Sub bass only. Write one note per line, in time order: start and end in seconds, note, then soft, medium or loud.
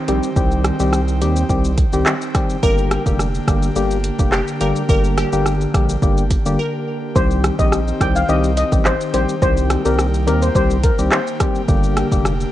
0.08 0.20 A#1 medium
0.36 0.71 C2 loud
0.80 1.23 C2 loud
1.21 1.44 D#2 medium
1.49 1.84 C2 loud
1.93 2.04 C2 medium
2.63 2.98 G1 loud
3.06 3.40 F1 medium
3.48 3.71 G1 medium
3.76 4.11 G1 loud
4.19 4.42 F1 medium
4.61 4.73 G1 medium
4.89 5.24 G1 loud
5.33 5.66 G1 medium
5.74 5.97 A#1 medium
6.02 6.37 G1 loud
6.46 6.56 G1 medium
7.16 7.51 C2 loud
7.59 7.93 A#1 medium
8.01 8.23 C2 medium
8.29 8.64 C2 loud
8.72 8.95 A1 loud
9.14 9.26 A#1 medium
9.42 9.77 C2 loud
9.85 10.29 C2 loud
10.27 10.50 D#2 medium
10.55 10.90 C2 loud
10.99 11.09 C2 medium
11.68 12.03 G1 loud
12.12 12.45 F1 loud